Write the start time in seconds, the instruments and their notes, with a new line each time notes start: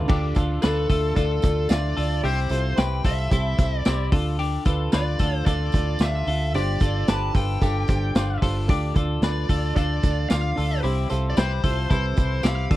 Already playing: upright piano E4 F4 A4 B4 C5 D5
0.08 fingered electric bass D2, upright piano D4 F4 A4 D5, clean electric guitar D4 G4, kick, crash, tambourine
0.35 fingered electric bass D2, upright piano D4 F4 A4 D5, clean electric guitar F4 A4, kick, hi-hat pedal, open hi-hat, tambourine
0.62 fingered electric bass D2, upright piano D4 F4 A4 D5, clean electric guitar F4 B4, lead electric guitar A4, snare, hi-hat pedal, open hi-hat, tambourine
0.89 fingered electric bass D2, upright piano D4 F4 A4 E5, clean electric guitar F4 A4, kick, hi-hat pedal, open hi-hat, tambourine
1.15 fingered electric bass D2, upright piano D4 F4 A4 D5, clean electric guitar F4 A4, lead electric guitar A4, kick, hi-hat pedal, open hi-hat, tambourine
1.42 fingered electric bass D2, upright piano D4 F4 A4 D5, kick, snare, hi-hat pedal, open hi-hat, tambourine
1.69 fingered electric bass D2, upright piano D4 F4 A4 E5, clean electric guitar D4 F4, lead electric guitar D5, snare, hi-hat pedal, open hi-hat, tambourine
1.96 fingered electric bass D2, upright piano D4 F4 A4 D5, clean electric guitar F4 A4, hi-hat pedal, open hi-hat, tambourine
2.23 fingered electric bass C2, upright piano C4 E4 G4 C5, clean electric guitar E4 G4, lead electric guitar C5, hi-hat pedal, open hi-hat
2.49 fingered electric bass C2, upright piano C4 E4 G4 C5, clean electric guitar F4 A4, hi-hat pedal, open hi-hat, tambourine
2.76 fingered electric bass C2, upright piano C4 E4 G4 C5, clean electric guitar G4 B4, lead electric guitar G5, snare, hi-hat pedal, open hi-hat, tambourine
3.03 fingered electric bass C2, upright piano C4 E4 G4 C5, clean electric guitar F4 A4, lead electric guitar E5, kick, hi-hat pedal, open hi-hat, tambourine
3.30 fingered electric bass C2, upright piano C4 E4 G4 C5, clean electric guitar E4 A4, kick, hi-hat pedal, open hi-hat, tambourine
3.58 fingered electric bass C2, upright piano C4 E4 G4 C5, kick, snare, hi-hat pedal, open hi-hat, tambourine
3.78 lead electric guitar D5
3.85 fingered electric bass C2, upright piano C4 E4 G4 C5, clean electric guitar E4 G4, snare, hi-hat pedal, open hi-hat, tambourine
4.12 fingered electric bass D2, upright piano D4 F4 A4 D5, clean electric guitar F4 A4, kick, hi-hat pedal, open hi-hat, tambourine
4.39 clean electric guitar D4 G4, hi-hat pedal, open hi-hat
4.65 fingered electric bass D2, upright piano D4 F4 A4 B4, clean electric guitar F4 A4, kick, hi-hat pedal, open hi-hat, tambourine
4.92 fingered electric bass D2, upright piano D4 F4 A4 D5, clean electric guitar F4 B4, lead electric guitar D5, snare, hi-hat pedal, open hi-hat, tambourine
5.19 fingered electric bass D2, upright piano D4 F4 A4 F5, clean electric guitar F4 A4, kick, hi-hat pedal, open hi-hat, tambourine
5.46 fingered electric bass D2, upright piano D4 F4 A4 D5, clean electric guitar F4 A4, lead electric guitar D5, kick, hi-hat pedal, open hi-hat, tambourine
5.72 fingered electric bass D2, upright piano D4 F4 A4 D5, kick, snare, hi-hat pedal, open hi-hat, tambourine
5.99 fingered electric bass D2, upright piano D4 F4 A4 D5, clean electric guitar D4 F4, lead electric guitar E5, snare, hi-hat pedal, open hi-hat, tambourine
6.27 fingered electric bass D2, upright piano D4 F4 A4 E5, clean electric guitar F4 A4, hi-hat pedal, open hi-hat
6.54 fingered electric bass G1, upright piano D4 F4 G4 C5, clean electric guitar D4 G4, lead electric guitar D5, hi-hat pedal, open hi-hat, tambourine
6.80 fingered electric bass G1, upright piano D4 F4 G4 A4, clean electric guitar F4 A4, kick, hi-hat pedal, open hi-hat, tambourine
7.07 fingered electric bass G1, upright piano D4 F4 G4 C5, clean electric guitar G4 B4, lead electric guitar A5, snare, hi-hat pedal, open hi-hat, tambourine
7.33 fingered electric bass G1, upright piano D4 F4 G4 B4, clean electric guitar F4 A4, lead electric guitar G5, kick, hi-hat pedal, open hi-hat, tambourine
7.61 fingered electric bass G1, upright piano D4 F4 G4 A4, clean electric guitar D4 G4, kick, hi-hat pedal, open hi-hat, tambourine
7.87 fingered electric bass G1, upright piano D4 F4 G4 C5, kick, snare, hi-hat pedal, open hi-hat, tambourine
8.15 fingered electric bass G1, upright piano D4 F4 G4 C5, clean electric guitar D4 F4, snare, hi-hat pedal, open hi-hat, tambourine
8.41 fingered electric bass G1, upright piano D4 F4 G4 C5, clean electric guitar F4 A4, kick, hi-hat pedal, open hi-hat, tambourine
8.68 fingered electric bass D2, upright piano D4 F4 A4 D5, clean electric guitar D4 G4, kick, hi-hat pedal, open hi-hat
8.94 fingered electric bass D2, upright piano D4 F4 A4 D5, clean electric guitar F4 A4, kick, hi-hat pedal, open hi-hat, tambourine
9.22 fingered electric bass D2, upright piano D4 F4 A4 D5, clean electric guitar F4 B4, lead electric guitar D5, snare, hi-hat pedal, open hi-hat, tambourine
9.49 fingered electric bass D2, upright piano D4 F4 A4 D5, clean electric guitar F4 A4, kick, hi-hat pedal, open hi-hat, tambourine
9.76 fingered electric bass D2, upright piano D4 F4 A4 D5, clean electric guitar F4 A4, lead electric guitar D5, kick, hi-hat pedal, open hi-hat, tambourine
10.02 fingered electric bass D2, upright piano D4 F4 A4 D5, kick, hi-hat pedal, open hi-hat, tambourine
10.29 fingered electric bass D2, upright piano D4 F4 A4 D5, clean electric guitar D4 F4, lead electric guitar F5, snare, hi-hat pedal, open hi-hat, tambourine
10.56 fingered electric bass D2, upright piano D4 F4 A4 D5, clean electric guitar F4 A4, hi-hat pedal, open hi-hat, tambourine
10.83 fingered electric bass C2, upright piano C4 E4 G4 C5, clean electric guitar E4 G4, hi-hat pedal, open hi-hat
11.09 fingered electric bass C2, upright piano C4 E4 G4 C5, clean electric guitar F4 A4, hi-hat pedal, open hi-hat, tambourine
11.30 lead electric guitar D5
11.36 fingered electric bass C2, upright piano C4 E4 G4, clean electric guitar G4 B4, lead electric guitar C5, snare, hi-hat pedal, open hi-hat, tambourine
11.63 fingered electric bass C2, upright piano C4 E4 G4 C5, clean electric guitar F4 A4, kick, hi-hat pedal, open hi-hat, tambourine
11.90 fingered electric bass C2, upright piano C4 E4 G4 B4, clean electric guitar E4 A4, lead electric guitar C5, kick, hi-hat pedal, open hi-hat, tambourine
12.16 fingered electric bass C2, upright piano C4 E4 G4 C5, kick, hi-hat pedal, open hi-hat, tambourine
12.43 fingered electric bass C2, upright piano C4 E4 G4 C5, clean electric guitar E4 G4, lead electric guitar F5, snare, hi-hat pedal, open hi-hat, tambourine
12.70 fingered electric bass D2, upright piano D4 F4 A4 D5, clean electric guitar F4 A4, kick, hi-hat pedal, open hi-hat